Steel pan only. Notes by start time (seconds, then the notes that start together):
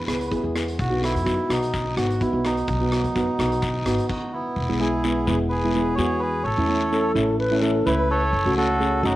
0.08 B3 E4 G#4
0.31 B3 E4 G#4
0.43 B3 E4 G#4
0.55 B3 E4 G#4
0.90 B3 D#4 F#4
1.02 B3 D#4 A4
1.25 B3 D#4 F#4
1.49 B3 D#4 F#4
1.97 B3 D#4 F#4
2.21 B3 D#4 F#4
2.33 B3 D#4 F#4
2.45 B3 D#4 F#4
2.80 B3 D#4 F#4
2.93 B3 D#4 F#4
3.15 B3 D#4 F#4
3.39 B3 D#4 F#4
3.86 B3 D#4 F#4
4.69 G#3 B3 E4
4.80 G#3 B3 E4
5.04 G#3 B3 E4
5.28 G#3 B3 E4
5.64 G#3 B3 E4
5.75 G#3 B3 E4
5.98 G#3 B3 F#4
6.58 A3 C#4 E4
6.68 A3 C#4 E4
6.91 A3 C#4 E4
7.15 A3 C#4 E4
7.51 A3 C#4 E4
7.62 A3 C#4 E4
7.86 A3 C#4 E4
8.46 A3 C#4 F#4
8.57 A3 C#4 A4
8.80 A3 C#4 G#4
9.03 A3 C#4 F#4